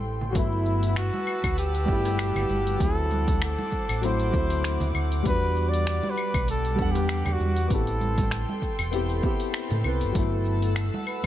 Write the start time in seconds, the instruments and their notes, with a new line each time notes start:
Already playing: fingered electric bass A1, grand piano G3 B3 C4 E4, analog synth pad A4 G5 C6
0.05 shaker
0.21 low conga, shaker
0.30 grand piano F#3, flugelhorn F#4
0.34 fingered electric bass G1, grand piano A3 B3, flugelhorn E4, analog synth pad B4 F#5 A5 E6, kick, open hi-hat, shaker
0.39 grand piano E4
0.52 shaker
0.66 shaker
0.83 open hi-hat, shaker
0.96 flugelhorn F#4, finger snap, open hi-hat, shaker
1.14 high conga, shaker
1.27 claves, shaker
1.44 fingered electric bass D2, kick, open hi-hat, claves, shaker
1.58 flugelhorn G4, open hi-hat, shaker
1.75 open hi-hat, shaker
1.85 fingered electric bass G1, grand piano G3 A3, kick, shaker
1.90 grand piano B3 E4
2.05 open hi-hat, high bongo, shaker
2.19 finger snap, open hi-hat, shaker
2.35 fingered electric bass G1, open hi-hat, low conga, claves, shaker
2.49 fingered electric bass G1, high conga, shaker
2.67 open hi-hat, shaker
2.77 fingered electric bass D2, grand piano F#3 A3, analog synth pad C5 D6, kick, open hi-hat, shaker
2.81 grand piano C4 E4, flugelhorn A4
2.97 shaker
3.11 high conga, shaker
3.28 kick, open hi-hat, high conga, shaker
3.42 flugelhorn A4, finger snap, open hi-hat, shaker
3.58 high conga, shaker
3.72 kick, shaker
3.89 fingered electric bass A1, open hi-hat, claves, shaker
4.02 grand piano F#3 A3 C4 E4, flugelhorn C5, open hi-hat, shaker
4.20 open hi-hat, shaker
4.30 fingered electric bass D2, grand piano F#3 A3, kick, shaker
4.35 grand piano C4 E4
4.50 open hi-hat, shaker
4.64 finger snap, open hi-hat, shaker
4.80 fingered electric bass D2, open hi-hat, high bongo, low conga, shaker
4.95 fingered electric bass D2, claves, shaker
5.12 open hi-hat, shaker
5.23 fingered electric bass E2, grand piano G3 B3, analog synth pad G3, kick, open hi-hat, shaker
5.27 grand piano D4 F#4, flugelhorn B4
5.42 shaker
5.56 shaker
5.69 flugelhorn D5
5.74 open hi-hat, shaker
5.87 finger snap, open hi-hat, shaker
6.03 high conga, shaker
6.10 flugelhorn B4
6.18 claves, shaker
6.34 fingered electric bass B1, kick, open hi-hat, claves, shaker
6.48 flugelhorn A4, open hi-hat, shaker
6.65 open hi-hat, shaker
6.75 fingered electric bass E2, grand piano G3 B3, kick, shaker
6.80 grand piano D4 F#5
6.92 flugelhorn G4, open hi-hat, high bongo, shaker
7.09 finger snap, open hi-hat, shaker
7.25 fingered electric bass E2, open hi-hat, low conga, claves, shaker
7.33 flugelhorn F#4
7.40 fingered electric bass E2, high conga, shaker
7.56 open hi-hat, shaker
7.68 fingered electric bass A1, grand piano B3 C4, analog synth pad A4 G5 C6, kick, open hi-hat, shaker
7.72 grand piano E4 G4, flugelhorn A4
7.87 open hi-hat, shaker
8.01 high conga, shaker
8.18 kick, open hi-hat, high conga, shaker
8.31 finger snap, open hi-hat, shaker
8.48 high conga, shaker
8.62 kick, shaker
8.79 fingered electric bass E1, open hi-hat, claves, shaker
8.91 grand piano B3 C4 E4 G4, open hi-hat, shaker
9.09 open hi-hat, shaker
9.22 grand piano B3 C4 E4 G4, kick, shaker
9.40 open hi-hat, shaker
9.54 finger snap, open hi-hat, shaker
9.71 fingered electric bass A2, open hi-hat, high bongo, low conga, shaker
9.84 fingered electric bass C2, grand piano B3 C4 E4 B4, claves, shaker
10.01 fingered electric bass G1, open hi-hat, shaker
10.12 fingered electric bass G1, grand piano F#3 A3, analog synth pad F#5 A5 E6, kick, open hi-hat, shaker
10.17 grand piano B3 E4
10.32 shaker
10.46 shaker
10.62 open hi-hat, shaker
10.76 finger snap, open hi-hat, shaker
10.93 high conga, shaker
11.07 flugelhorn B4, claves, shaker